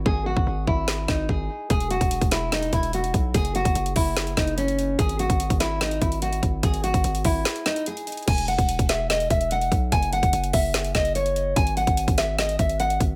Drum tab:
CC |--------------------------------|--------------------------------|--------------------------------|--------------------------------|
HH |--------------------------------|x-x-x-x-x-x-x---x-x-x-x-x-x-x---|x-x-x-x-x-x-o---x-x-x-x-x-x-x---|x-x-x-x-x-x-x---x-x-x-x-x-x-x---|
SD |----------------o---o-----------|------------o---o---------------|----------------o---o-----------|------------o---o---------------|
BD |o-----o-----o-------o---o-------|o-----o---o---------o-------o---|o-----o-----o-------o-----------|o-----o---o---------o-------o---|

CC |--------------------------------|x-------------------------------|--------------------------------|--------------------------------|
HH |x-x-x-x-x-x-o---x-x-x-x-x-x-xxxx|x-x-x-x-x-x-x---x-x-x-x-x-x-x---|x-x-x-x-x-x-o---x-x-x-x-x-x-x---|x-x-x-x-x-x-x---x-x-x-x-x-x-x---|
SD |----------------o---o-----------|------------o---o---------------|----------------o---o-----------|------------o---o---------------|
BD |o-----o-----o-------------------|o-----o---o---------o-------o---|o-----o-----o-------o-----------|o-----o---o---------o-------o---|